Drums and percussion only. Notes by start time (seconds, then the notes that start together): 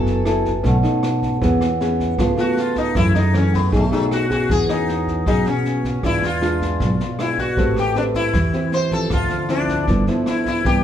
0.06 snare
0.25 cross-stick, snare
0.45 kick, snare
0.65 kick, snare
0.84 snare
1.03 cross-stick, snare
1.22 kick, snare
1.42 kick, snare
1.61 cross-stick, snare
1.81 snare
1.99 kick, snare
2.18 kick, cross-stick, snare
2.37 snare
2.57 snare
2.75 kick, snare
2.95 kick, cross-stick, snare
3.15 snare
3.34 cross-stick, snare
3.53 kick, snare
3.73 kick, snare
3.93 snare
4.11 cross-stick, snare
4.30 kick, snare
4.50 kick, snare
4.69 cross-stick, snare
4.88 snare
5.07 kick, snare
5.26 kick, cross-stick, snare
5.45 snare
5.65 snare
5.84 kick, snare
6.03 kick, cross-stick, snare
6.23 snare
6.42 cross-stick, snare
6.61 kick, snare
6.80 kick, snare
7.00 snare
7.19 cross-stick, snare
7.38 kick, snare
7.57 kick, snare
7.76 cross-stick, snare
7.95 snare
8.14 kick, snare
8.34 kick, cross-stick, snare
8.53 snare
8.72 snare
8.91 kick, snare
9.10 kick, cross-stick, snare
9.29 snare
9.49 cross-stick, snare
9.68 kick, snare
9.87 kick, snare
10.07 snare
10.26 cross-stick, snare
10.46 kick, snare
10.65 kick, snare